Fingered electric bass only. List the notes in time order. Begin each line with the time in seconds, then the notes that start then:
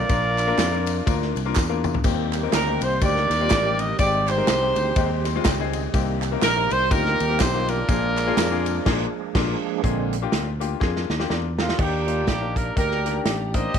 0.10 A#1
0.58 F2
1.07 D2
1.35 C2
1.56 E2
2.05 D#2
2.53 D2
2.81 C2
3.02 D2
3.30 D#2
3.51 A1
3.99 G#1
4.48 C2
4.76 D2
4.96 D#2
5.45 C#2
5.94 C2
6.43 A#1
6.71 C2
6.91 D2
7.21 D#2
7.40 B1
7.89 A#1
8.37 F2
8.86 A#1
9.35 A#1
9.84 A#1
10.33 D2
10.81 F2
11.10 D#2
11.30 E2
11.79 D#2
12.28 A#1
12.77 D2
13.25 A1
13.74 G#1